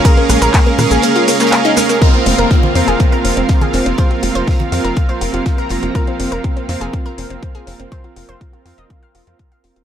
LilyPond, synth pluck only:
\new Staff \with { instrumentName = "Synth pluck" } { \time 4/4 \key f \phrygian \tempo 4 = 122 bes'16 bes16 bes16 bes'16 bes16 bes16 bes16 aes'16 bes16 f'16 bes16 bes16 bes16 ees'16 bes16 bes16 | bes'16 c'16 c'16 bes'16 c'16 c'16 c'16 aes'16 c'16 bes'16 c'16 c'16 c'16 aes'16 c'16 c'16 | c''16 f'16 f'16 c''16 f'16 f'16 f'16 bes'16 f'16 c''16 f'16 f'16 f'16 bes'16 f'16 f'16 | bes'16 c'16 c'16 bes'16 c'16 c'16 c'16 aes'16 c'16 bes'16 c'16 c'16 c'16 aes'16 c'16 c'16 |
c''16 f'16 f'16 c''16 f'16 f'16 f'16 ees''16 f'16 f''16 f'16 f'16 f'16 f''16 f'16 f'16 | }